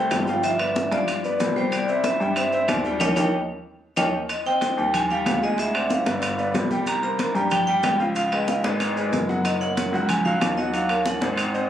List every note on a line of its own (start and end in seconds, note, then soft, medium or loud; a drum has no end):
0.00 0.21 A3 medium
0.00 0.22 A4 medium
0.00 0.22 C5 medium
0.11 0.86 G1 medium
0.11 0.45 G5 medium
0.11 high bongo soft
0.11 low bongo medium
0.11 high conga medium
0.11 high timbale medium
0.11 low timbale medium
0.11 claves medium
0.11 maracas medium
0.27 0.41 F3 medium
0.27 0.41 F4 medium
0.27 0.41 F5 medium
0.27 high conga medium
0.27 maracas soft
0.43 0.57 F3 medium
0.43 0.57 F4 medium
0.43 0.58 E5 loud
0.43 0.57 F5 medium
0.43 high bongo medium
0.43 high conga soft
0.43 high timbale medium
0.43 maracas medium
0.59 0.86 B3 medium
0.59 0.87 B4 medium
0.59 0.87 D5 medium
0.59 0.93 E5 medium
0.59 high bongo soft
0.59 high conga soft
0.59 high timbale medium
0.59 claves medium
0.59 maracas soft
0.76 high bongo medium
0.76 high conga medium
0.76 low timbale medium
0.76 maracas medium
0.92 1.36 G2 medium
0.92 1.19 F3 medium
0.92 1.19 F4 medium
0.92 1.58 D5 medium
0.92 1.19 F5 medium
0.92 high bongo soft
0.92 high conga medium
0.92 high timbale medium
0.92 maracas soft
1.08 high bongo medium
1.08 high conga soft
1.08 high timbale medium
1.08 claves medium
1.08 maracas medium
1.24 1.51 B3 medium
1.24 1.51 B4 medium
1.24 1.51 D5 medium
1.24 high bongo soft
1.24 high conga soft
1.24 maracas soft
1.40 2.15 C2 medium
1.40 high bongo soft
1.40 low bongo medium
1.40 high conga medium
1.40 high timbale medium
1.40 low timbale medium
1.40 maracas medium
1.56 1.83 G3 medium
1.56 1.83 G4 medium
1.56 1.73 C5 medium
1.56 1.83 G5 medium
1.56 high conga medium
1.56 maracas soft
1.72 2.05 D5 loud
1.72 high bongo medium
1.72 high timbale medium
1.72 claves medium
1.72 maracas medium
1.88 2.02 C4 medium
1.88 2.02 C5 medium
1.88 2.02 E5 medium
1.88 high bongo soft
1.88 high conga soft
1.88 maracas soft
2.04 2.18 C4 medium
2.04 2.18 C5 medium
2.04 2.36 E5 medium
2.04 2.18 E5 medium
2.04 high bongo medium
2.04 high conga loud
2.04 high timbale medium
2.04 low timbale medium
2.04 maracas medium
2.20 2.65 G2 medium
2.20 2.34 G3 medium
2.20 2.34 G4 medium
2.20 2.34 G5 medium
2.20 high bongo soft
2.20 high conga soft
2.20 maracas soft
2.36 2.50 C4 medium
2.36 2.50 C5 medium
2.36 2.67 E5 medium
2.36 2.50 E5 medium
2.36 high bongo medium
2.36 high conga soft
2.36 high timbale medium
2.36 claves medium
2.36 maracas medium
2.52 2.79 C4 medium
2.52 2.79 C5 medium
2.52 2.80 E5 medium
2.52 high bongo soft
2.52 high conga soft
2.52 maracas soft
2.68 2.98 D#2 medium
2.68 3.02 D5 medium
2.68 high bongo soft
2.68 low bongo medium
2.68 high conga medium
2.68 high timbale loud
2.68 low timbale medium
2.68 claves medium
2.68 maracas medium
2.85 2.98 G3 medium
2.85 2.99 G4 medium
2.85 2.98 G5 medium
2.85 high conga medium
2.85 maracas soft
3.00 3.13 D#2 medium
3.00 3.11 D#4 medium
3.00 3.11 G4 loud
3.00 3.11 A#4 medium
3.00 3.11 C#5 loud
3.00 3.11 D#5 loud
3.00 3.11 G5 medium
3.00 high bongo medium
3.00 low conga medium
3.00 high timbale medium
3.00 claves medium
3.00 maracas loud
3.16 3.29 D#2 medium
3.16 3.28 D#4 loud
3.16 3.27 G4 loud
3.16 3.28 A#4 medium
3.16 3.27 C#5 medium
3.16 3.27 D#5 medium
3.16 3.27 G5 loud
3.16 high bongo loud
3.16 low conga medium
3.16 high timbale medium
3.16 claves loud
3.16 maracas medium
3.96 4.09 D#2 medium
3.96 4.08 D#4 medium
3.96 4.08 G4 medium
3.96 4.08 A#4 medium
3.96 4.07 C#5 medium
3.96 4.07 D#5 medium
3.96 4.07 G5 medium
3.96 high bongo medium
3.96 low conga medium
3.96 high timbale medium
3.96 claves medium
3.96 maracas medium
4.29 4.46 D#5 medium
4.29 high bongo medium
4.29 high conga soft
4.29 high timbale medium
4.29 claves medium
4.29 maracas medium
4.46 4.59 C4 medium
4.46 4.59 C5 medium
4.46 4.59 D#5 medium
4.46 4.96 G5 loud
4.46 high bongo soft
4.46 high conga soft
4.46 maracas soft
4.61 4.75 C4 medium
4.61 4.75 C5 medium
4.61 4.75 D#5 medium
4.61 high bongo medium
4.61 high conga medium
4.61 high timbale medium
4.61 low timbale medium
4.61 maracas medium
4.77 5.22 D#2 medium
4.77 5.04 G3 medium
4.77 5.04 G4 medium
4.77 5.05 G5 medium
4.77 high bongo soft
4.77 high conga soft
4.77 maracas soft
4.94 5.11 G#5 loud
4.94 high bongo medium
4.94 high conga soft
4.94 low conga medium
4.94 high timbale medium
4.94 claves medium
4.94 maracas medium
5.10 5.37 G3 medium
5.10 5.37 G4 medium
5.10 5.40 F5 medium
5.10 5.37 G5 medium
5.10 high bongo soft
5.10 high conga soft
5.10 maracas soft
5.26 6.01 D2 medium
5.26 high bongo soft
5.26 low bongo medium
5.26 high conga medium
5.26 high timbale medium
5.26 low timbale medium
5.26 claves medium
5.26 maracas medium
5.43 5.56 G#3 medium
5.43 5.56 G#4 medium
5.43 5.59 D#5 medium
5.43 5.56 G#5 medium
5.43 maracas soft
5.58 5.72 G#3 medium
5.58 5.72 G#4 medium
5.58 5.89 E5 loud
5.58 5.72 G#5 medium
5.58 high bongo medium
5.58 high conga soft
5.58 high timbale medium
5.58 maracas medium
5.74 6.01 C4 medium
5.74 6.01 C5 medium
5.74 6.01 D5 medium
5.74 high bongo soft
5.74 high conga soft
5.74 high timbale medium
5.74 claves medium
5.74 maracas soft
5.90 6.52 F5 medium
5.90 high bongo medium
5.90 high conga medium
5.90 low timbale medium
5.90 maracas medium
6.06 6.51 G1 medium
6.06 6.33 B3 medium
6.06 6.33 B4 medium
6.06 6.33 D5 medium
6.06 high bongo soft
6.06 high conga medium
6.06 high timbale medium
6.06 maracas soft
6.22 high bongo medium
6.22 high conga soft
6.22 high timbale medium
6.22 claves medium
6.22 maracas medium
6.38 6.65 B3 medium
6.38 6.65 B4 medium
6.38 6.65 D5 medium
6.38 high bongo soft
6.38 high conga soft
6.38 maracas soft
6.54 7.30 C2 medium
6.54 high bongo soft
6.54 low bongo medium
6.54 high conga medium
6.54 high timbale medium
6.54 low timbale medium
6.54 maracas medium
6.70 6.97 G3 medium
6.70 6.98 G4 medium
6.70 6.98 G5 medium
6.70 high conga medium
6.70 maracas soft
6.87 7.02 A#5 loud
6.87 high bongo medium
6.87 high conga soft
6.87 high timbale medium
6.87 claves medium
6.87 maracas medium
7.02 7.16 A#3 medium
7.02 7.16 A#4 medium
7.02 7.16 C5 medium
7.02 7.48 A#5 loud
7.02 high bongo soft
7.02 high conga soft
7.02 maracas soft
7.19 7.33 A#3 medium
7.19 7.33 A#4 medium
7.19 7.33 C5 medium
7.19 high bongo medium
7.19 high conga loud
7.19 high timbale medium
7.19 low timbale medium
7.19 maracas medium
7.35 7.80 G2 medium
7.35 7.62 G3 medium
7.35 7.62 G4 medium
7.35 7.62 G5 medium
7.35 high bongo soft
7.35 high conga soft
7.35 maracas soft
7.51 7.66 G5 medium
7.51 high bongo medium
7.51 high conga soft
7.51 low conga medium
7.51 high timbale medium
7.51 claves medium
7.51 maracas medium
7.67 7.94 G3 loud
7.67 7.94 G4 medium
7.67 7.97 G5 medium
7.67 7.94 G5 medium
7.67 high bongo soft
7.67 high conga soft
7.67 maracas soft
7.83 8.58 C#2 medium
7.83 high bongo soft
7.83 low bongo medium
7.83 high conga medium
7.83 high timbale loud
7.83 low timbale medium
7.83 claves medium
7.83 maracas medium
8.00 8.13 F3 medium
8.00 8.13 F4 medium
8.00 8.13 F5 medium
8.00 maracas soft
8.16 8.29 F3 medium
8.16 8.29 F4 medium
8.16 8.31 F5 loud
8.16 8.29 F5 medium
8.16 high bongo medium
8.16 high conga soft
8.16 high timbale medium
8.16 maracas medium
8.32 8.59 G#3 medium
8.32 8.59 G#4 medium
8.32 8.59 B4 medium
8.32 8.47 D#5 medium
8.32 high bongo soft
8.32 high conga soft
8.32 high timbale loud
8.32 claves medium
8.32 maracas soft
8.48 8.65 F5 medium
8.48 high bongo medium
8.48 high conga medium
8.48 low timbale medium
8.48 maracas medium
8.64 9.09 G#1 loud
8.64 8.90 G#3 medium
8.64 8.91 G#4 medium
8.64 8.91 B4 medium
8.64 9.25 D#5 medium
8.64 high bongo soft
8.64 high conga loud
8.64 high timbale medium
8.64 maracas soft
8.80 high bongo medium
8.80 high conga soft
8.80 high timbale medium
8.80 claves medium
8.80 maracas medium
8.96 9.22 G#3 medium
8.96 9.23 G#4 medium
8.96 9.23 B4 medium
8.96 high bongo soft
8.96 high conga soft
8.96 maracas soft
9.12 9.87 F#1 medium
9.12 high bongo soft
9.12 low bongo medium
9.12 high conga medium
9.12 high timbale medium
9.12 low timbale medium
9.12 maracas medium
9.29 9.55 F#3 medium
9.29 9.55 F#4 medium
9.29 9.56 F#5 medium
9.29 high conga medium
9.29 maracas soft
9.45 9.60 D#5 medium
9.45 high bongo medium
9.45 high conga soft
9.45 high timbale medium
9.45 claves medium
9.45 maracas medium
9.60 9.74 A#3 medium
9.60 9.74 A#4 medium
9.60 9.74 C#5 medium
9.60 10.11 F#5 loud
9.60 high bongo soft
9.60 high conga soft
9.60 maracas soft
9.77 9.90 A#3 medium
9.77 9.90 A#4 medium
9.77 9.90 C#5 medium
9.77 high bongo medium
9.77 high conga medium
9.77 high timbale medium
9.77 low timbale medium
9.77 maracas medium
9.92 10.38 C#2 medium
9.92 10.20 F#3 medium
9.92 10.20 F#4 medium
9.92 10.20 F#5 medium
9.92 high bongo soft
9.92 high conga soft
9.92 maracas soft
10.09 10.26 G#5 medium
10.09 high bongo medium
10.09 high conga soft
10.09 low conga medium
10.09 high timbale medium
10.09 claves medium
10.09 maracas medium
10.25 10.52 F#3 medium
10.25 10.52 F#4 loud
10.25 10.55 F5 medium
10.25 10.52 F5 medium
10.25 high bongo soft
10.25 high conga soft
10.25 low conga medium
10.25 maracas soft
10.41 11.16 D#2 medium
10.41 high bongo soft
10.41 low bongo medium
10.41 high conga medium
10.41 high timbale loud
10.41 low timbale medium
10.41 claves medium
10.41 maracas medium
10.57 10.71 F#3 medium
10.57 10.71 F#4 medium
10.57 10.73 D#5 medium
10.57 10.71 F#5 medium
10.57 high conga medium
10.57 maracas soft
10.73 10.87 F#3 medium
10.73 10.87 F#4 medium
10.73 11.04 F5 loud
10.73 10.87 F#5 medium
10.73 high bongo medium
10.73 high conga soft
10.73 high timbale medium
10.73 maracas medium
10.89 11.16 A#3 medium
10.89 11.16 A#4 medium
10.89 11.17 C#5 medium
10.89 high bongo soft
10.89 high conga soft
10.89 high timbale medium
10.89 claves medium
10.89 maracas soft
11.06 11.66 F#5 medium
11.06 high bongo medium
11.06 high conga loud
11.06 low timbale medium
11.06 maracas medium
11.21 11.67 G#1 medium
11.21 11.48 C4 medium
11.21 11.49 C5 medium
11.21 11.49 D#5 medium
11.21 high conga medium
11.21 high timbale medium
11.21 maracas soft
11.37 high bongo medium
11.37 high conga soft
11.37 high timbale medium
11.37 claves medium
11.37 maracas medium
11.54 11.70 C4 medium
11.54 11.70 C5 medium
11.54 11.70 D#5 medium
11.54 high bongo soft
11.54 high conga soft
11.54 maracas soft